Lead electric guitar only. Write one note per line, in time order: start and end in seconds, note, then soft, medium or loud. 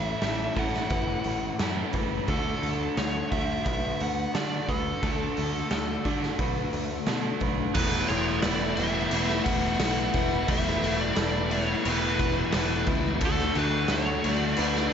0.00 0.59 E5 loud
0.59 1.91 F#5 medium
2.29 2.99 A4 medium
2.97 3.31 C#5 medium
3.31 3.63 E5 loud
3.65 4.00 E5 loud
4.02 4.36 F#5 loud
4.37 4.71 D5 loud
4.69 7.04 A4 medium
7.74 8.10 B4 medium
8.08 8.42 C#5 loud
8.42 8.75 D5 medium
8.76 9.41 E5 medium
9.44 10.14 F#5 loud
10.15 10.50 F#5 medium
10.49 11.01 E5 loud
11.01 11.52 D5 medium
11.52 11.87 C#5 medium
11.90 12.86 B4 medium
13.25 13.58 A4 medium
13.58 13.93 B4 loud
13.91 14.26 C#5 medium
14.26 14.93 D5 loud